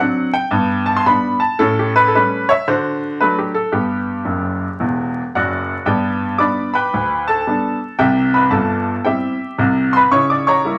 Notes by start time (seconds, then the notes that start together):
0.00 F#3 C4 D4 F#5
0.34 G5
0.51 G2 B3
0.86 A5
0.96 C6
1.06 G3 B3 D4 B5
1.40 A5
1.59 A2 C#4 A4
1.79 G4
1.96 B4
2.08 A4
2.15 G3 A3 C#4 B4
2.49 C#5 E5
2.68 D3 F#4 C5
3.20 F#3 A3 D4 B4
3.38 G4
3.54 A4
3.72 G2 B3 G4
4.25 F#1 F#2
4.80 E1 E2
5.35 F#1 F#2 F#4 D5 F#5
5.86 G2 B3 G4 D5 G5
6.38 G3 B3 D4 D5 B5 D6
6.74 B4 G5 B5
6.94 D2
7.28 A4 A5
7.47 G3 B3 D4
7.99 C2 C3 G4 E5 G5
8.34 B4 B5
8.50 G1 G2 A4 A5
9.04 G3 C4 E4 G4 E5 G5
9.58 C2 C3
9.93 B4 B5 C6
10.11 C#3 E4 C#5 C#6
10.30 D5 D6
10.47 C#5 A#5 C#6
10.65 G3 A#3 E4